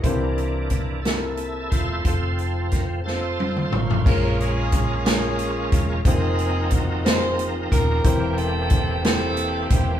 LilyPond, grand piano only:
<<
  \new Staff \with { instrumentName = "Grand piano" } { \time 6/8 \key f \phrygian \tempo 4. = 60 <bes c' e' g' c''>4 r8 <bes c' e' g' a' bes'>4 r8 | <c' f' a'>4 r8 <c' f' a'>4 r8 | \key bes \minor <aes bes des' f' bes'>4 r8 <aes bes des' f' aes'>4 r8 | <a bes c' ees' f' c''>4 r8 <bes c' ees' f' g' aes'>4 r8 |
<bes c' e' g' c''>4 r8 <bes c' e' g' c''>4 r8 | }
  \new Staff \with { instrumentName = "Grand piano" } { \clef bass \time 6/8 \key f \phrygian c4. r4. | r2. | \key bes \minor bes,4. r4. | r2. |
e4. r4. | }
>>